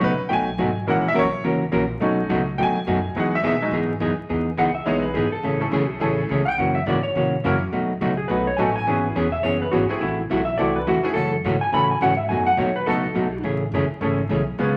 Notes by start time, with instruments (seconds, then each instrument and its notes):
Already playing: upright piano A3 C#4 D#4
0.00 upright bass C#2, hollow-body jazz guitar B2 F#3 A3 D#4 F#4, upright piano B4
0.20 muted upright bass stroke
0.29 upright bass B1, hollow-body jazz guitar B2 F#3 A3 D#4 F#4, upright piano G5
0.33 upright piano G#5
0.58 upright bass G#1, hollow-body jazz guitar B2 F#3 A3 D#4 F#4
0.87 upright bass A#1, hollow-body jazz guitar E3 A#3 C#4 F#4 A#4, upright piano G#3 A#3 E4 F#5
1.08 upright piano E5
1.14 upright bass B1, hollow-body jazz guitar E3 A#3 C#4 F#4 A#4
1.19 upright piano C#5
1.44 upright bass C#2, hollow-body jazz guitar E3 A#3 C#4 F#4 A#4
1.72 upright bass A#1, hollow-body jazz guitar E3 A#3 C#4 F#4 A#4
2.00 upright bass B1, hollow-body jazz guitar B2 F#3 A3 D#4 F#4, upright piano A3 C#4 D#4
2.29 upright bass C#2, hollow-body jazz guitar B2 F#3 A3 D#4 F#4
2.58 upright bass D#2, hollow-body jazz guitar B2 F#3 A3 D#4 F#4, upright piano G5
2.63 upright piano G#5
2.87 upright bass F#2, hollow-body jazz guitar B2 F#3 A3 D#4 F#4
3.15 upright bass E2, hollow-body jazz guitar E3 B3 D#4 G#4, upright piano F#3 G#3 D#4
3.20 upright piano F#5
3.35 upright piano E5
3.43 upright bass B2, hollow-body jazz guitar E3 B3 D#4 G#4, upright piano E5
3.62 upright piano F#3 G#3 D#4
3.71 upright bass G#2, hollow-body jazz guitar E3 B3 D#4 G#4
4.00 upright bass F#2, hollow-body jazz guitar E3 B3 D#4 G#4
4.18 muted upright bass stroke
4.29 upright bass E2, hollow-body jazz guitar E3 B3 D#4 G#4
4.57 upright bass C#2, hollow-body jazz guitar E3 B3 D#4 G#4, electric slide guitar F#5
4.75 electric slide guitar E5
4.86 upright bass B1, hollow-body jazz guitar E3 B3 D#4 G#4, upright piano G#3 B3 D#4 E4 G#4, electric slide guitar C#5
5.02 electric slide guitar B4
5.14 upright bass G#1, hollow-body jazz guitar E3 B3 D#4 G#4, electric slide guitar G#4
5.32 electric slide guitar A4, muted upright bass stroke
5.43 upright bass A1, hollow-body jazz guitar C#3 E3 A3 C#4 G#4
5.60 upright piano A3 C#4 E4 G#4 A4
5.71 upright bass B1, hollow-body jazz guitar C#3 E3 A3 C#4 G#4
6.00 upright bass A1, hollow-body jazz guitar C#3 E3 A3 C#4 G#4, upright piano A3 C#4 E4 G#4 A4
6.29 upright bass C#2, hollow-body jazz guitar C#3 E3 A3 C#4 G#4
6.45 electric slide guitar G5
6.58 upright bass F#2, hollow-body jazz guitar C#3 E3 A#3 C#4 F#4, electric slide guitar F#5
6.75 electric slide guitar E5
6.86 upright bass G#2, hollow-body jazz guitar C#3 E3 A#3 C#4 F#4, electric slide guitar D5
7.03 electric slide guitar C#5
7.15 upright bass A#2, hollow-body jazz guitar C#3 E3 A#3 C#4 F#4
7.44 upright bass F#2, hollow-body jazz guitar C#3 E3 A#3 C#4 F#4, upright piano A#3 C#4 E4 F#4 A#4
7.72 upright bass D#2, hollow-body jazz guitar B2 F#3 A3 D#4 F#4
8.01 upright bass C#2, hollow-body jazz guitar B2 F#3 A3 D#4 F#4
8.17 electric slide guitar G#4
8.28 upright bass B1, hollow-body jazz guitar B2 F#3 A3 D#4 F#4, electric slide guitar B4
8.47 electric slide guitar C#5
8.57 upright bass A1, hollow-body jazz guitar B2 F#3 A3 D#4 F#4, upright piano A3 B3 D#4 F#4 A4, electric slide guitar G#5
8.76 electric slide guitar G#5
8.87 upright bass G#1, hollow-body jazz guitar E3 B3 C#4 G#4, upright piano B3 C#4 E4 F#4 G#4
9.16 upright bass E1, hollow-body jazz guitar E3 B3 C#4 G#4
9.32 electric slide guitar E5
9.43 upright bass F#1, hollow-body jazz guitar E3 B3 C#4 G#4, electric slide guitar C#5
9.62 electric slide guitar B4
9.72 upright bass G#1, hollow-body jazz guitar E3 B3 C#4 G#4, electric slide guitar F#4
9.89 upright piano A3 C4 E4 F#4 G#4, electric slide guitar G#4, muted upright bass stroke
10.01 upright bass A1, hollow-body jazz guitar C3 E3 A3 E4 F#4, electric slide guitar E4
10.30 upright bass B1, hollow-body jazz guitar C3 E3 A3 E4 F#4
10.45 electric slide guitar E5
10.57 upright bass C2, hollow-body jazz guitar C3 E3 A3 E4 F#4, upright piano A3 C4 E4 F#4 A4, electric slide guitar D5
10.76 electric slide guitar B4
10.87 upright bass E2, hollow-body jazz guitar C3 E3 A3 E4 F#4, electric slide guitar F#4
11.03 upright piano A3 C#4 E4 F#4 G#4, electric slide guitar G#4
11.14 upright bass F#2, hollow-body jazz guitar C#3 E3 A3 C#4 F#4, electric slide guitar A4
11.44 upright bass G#2, hollow-body jazz guitar C#3 E3 A3 C#4 F#4
11.61 electric slide guitar G#5
11.72 upright bass A2, hollow-body jazz guitar C#3 E3 A3 C#4 F#4, upright piano A3 C#4 E4 F#4 A4, electric slide guitar B5
11.91 electric slide guitar G#5
12.01 upright bass G#2, hollow-body jazz guitar C#3 E3 A3 C#4 F#4, electric slide guitar F#5
12.17 electric slide guitar E5
12.29 upright bass F#2, hollow-body jazz guitar B2 F#3 A3 D#4 F#4, electric slide guitar G#5
12.46 electric slide guitar F#5
12.57 upright bass D#2, hollow-body jazz guitar B2 F#3 A3 D#4 F#4, electric slide guitar C#5
12.76 electric slide guitar B4
12.86 upright bass C#2, hollow-body jazz guitar B2 F#3 A3 D#4 F#4, upright piano A3 B3 D#4 F#4 A4, electric slide guitar A4
13.15 upright bass B1, hollow-body jazz guitar B2 F#3 A3 D#4 F#4
13.43 upright bass A1, hollow-body jazz guitar C#3 E3 A3 C#4 G#4
13.72 upright bass F#1, hollow-body jazz guitar C#3 E3 A3 C#4 G#4
13.88 muted upright bass stroke
14.01 upright bass G#1, hollow-body jazz guitar C#3 E3 A3 C#4 G#4, upright piano A3 C#4 E4 G#4 A4
14.29 upright bass B1, hollow-body jazz guitar C#3 E3 A3 C#4 G#4
14.58 upright bass C#2, hollow-body jazz guitar C#3 G#3 B3 F4 G#4, upright piano B3 C#4 F4 G#4 B4